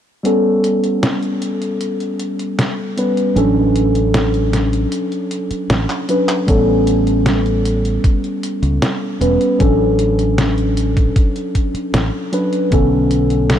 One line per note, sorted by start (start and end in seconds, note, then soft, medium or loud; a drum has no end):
0.23 2.92 G3 medium
0.23 2.93 B3 medium
0.23 2.93 C#4 medium
0.23 2.94 A4 medium
0.23 closed hi-hat medium
0.64 closed hi-hat medium
0.84 closed hi-hat medium
1.03 snare loud
1.03 closed hi-hat medium
1.23 closed hi-hat soft
1.42 closed hi-hat medium
1.62 closed hi-hat medium
1.81 closed hi-hat medium
2.00 closed hi-hat soft
2.19 closed hi-hat medium
2.39 closed hi-hat medium
2.59 snare loud
2.59 closed hi-hat medium
2.97 3.19 G3 medium
2.97 3.20 B3 medium
2.97 3.20 C#4 medium
2.97 3.20 B4 medium
2.97 closed hi-hat medium
3.17 closed hi-hat medium
3.35 4.85 A1 medium
3.35 6.04 F#3 medium
3.35 6.04 C#4 medium
3.35 6.05 D4 medium
3.35 6.05 A4 loud
3.35 closed hi-hat medium
3.76 closed hi-hat medium
3.95 closed hi-hat medium
4.14 snare loud
4.14 closed hi-hat medium
4.34 closed hi-hat soft
4.53 snare medium
4.53 closed hi-hat medium
4.73 closed hi-hat medium
4.92 closed hi-hat medium
5.12 closed hi-hat soft
5.31 closed hi-hat medium
5.51 muted fingered electric bass stroke soft
5.51 closed hi-hat medium
5.70 5.85 A1 medium
5.70 snare loud
5.70 closed hi-hat medium
5.90 clap medium
6.09 6.31 F#3 medium
6.09 6.31 C#4 medium
6.09 6.32 D4 medium
6.09 6.32 B4 medium
6.09 closed hi-hat medium
6.29 clap medium
6.29 closed hi-hat medium
6.47 7.97 A1 medium
6.47 9.16 G3 medium
6.47 9.16 B3 medium
6.47 9.17 C#4 medium
6.47 9.17 A4 medium
6.47 kick loud
6.47 closed hi-hat medium
6.87 closed hi-hat medium
7.07 closed hi-hat medium
7.26 snare loud
7.26 closed hi-hat medium
7.46 closed hi-hat soft
7.65 closed hi-hat medium
7.85 closed hi-hat medium
8.04 kick loud
8.04 closed hi-hat medium
8.24 closed hi-hat soft
8.43 closed hi-hat medium
8.62 8.78 C#2 medium
8.62 closed hi-hat medium
8.82 snare loud
8.82 closed hi-hat medium
9.20 9.36 E1 loud
9.20 9.43 G3 medium
9.20 9.43 B3 medium
9.20 9.43 C#4 medium
9.20 9.43 B4 medium
9.20 closed hi-hat medium
9.41 closed hi-hat medium
9.59 11.09 A1 medium
9.59 12.28 F#3 medium
9.59 12.28 C#4 medium
9.59 12.29 D4 medium
9.59 12.29 A4 loud
9.59 kick loud
9.59 closed hi-hat medium
9.99 closed hi-hat medium
10.19 closed hi-hat medium
10.38 snare loud
10.38 closed hi-hat medium
10.58 closed hi-hat soft
10.77 closed hi-hat medium
10.97 kick loud
10.97 closed hi-hat medium
11.16 kick loud
11.16 closed hi-hat medium
11.36 closed hi-hat soft
11.55 kick medium
11.55 closed hi-hat medium
11.74 muted fingered electric bass stroke soft
11.74 closed hi-hat medium
11.94 12.09 A1 medium
11.94 snare loud
11.94 closed hi-hat medium
12.32 12.54 F#3 medium
12.32 12.55 C#4 medium
12.32 12.55 D4 medium
12.32 12.55 B4 medium
12.32 closed hi-hat medium
12.53 closed hi-hat medium
12.71 13.59 B1 loud
12.71 13.59 D3 medium
12.71 13.59 B3 medium
12.71 13.59 C#4 medium
12.71 13.59 A4 medium
12.71 kick loud
12.71 closed hi-hat medium
13.11 closed hi-hat medium
13.30 closed hi-hat medium
13.50 snare loud
13.50 closed hi-hat medium